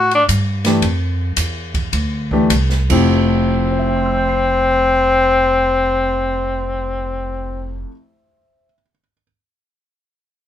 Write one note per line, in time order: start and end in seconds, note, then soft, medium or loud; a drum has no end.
0.00 0.28 A2 medium
0.00 0.13 F#4 medium
0.11 0.24 D4 medium
0.11 ride soft
0.28 0.81 G2 medium
0.28 kick soft
0.28 hi-hat pedal medium
0.28 ride medium
0.65 0.81 E3 medium
0.65 0.81 A3 medium
0.65 0.81 D4 medium
0.65 0.81 G4 medium
0.65 snare soft
0.65 ride soft
0.82 1.35 F2 medium
0.82 kick soft
0.82 ride medium
1.37 1.91 E2 medium
1.37 kick soft
1.37 hi-hat pedal medium
1.37 ride medium
1.74 kick medium
1.74 ride soft
1.93 2.49 D2 medium
1.93 kick soft
1.93 ride medium
2.31 2.49 E3 medium
2.31 2.49 A3 medium
2.31 2.49 D4 medium
2.31 2.49 G4 medium
2.31 kick medium
2.50 2.89 C2 medium
2.50 kick soft
2.50 hi-hat pedal medium
2.50 ride medium
2.70 snare soft
2.90 7.83 F1 medium
2.90 7.88 F2 medium
2.90 7.88 F3 soft
2.90 7.89 A3 medium
2.90 7.85 C4 medium
2.90 7.90 E4 medium
2.90 7.91 G4 medium
2.90 kick medium
2.90 crash medium
3.71 8.65 C5 soft
3.79 8.73 E5 soft
3.87 8.81 G5 soft
3.96 8.90 C6 soft
4.06 9.00 E6 soft
4.17 9.11 G6 soft
4.29 9.23 C7 soft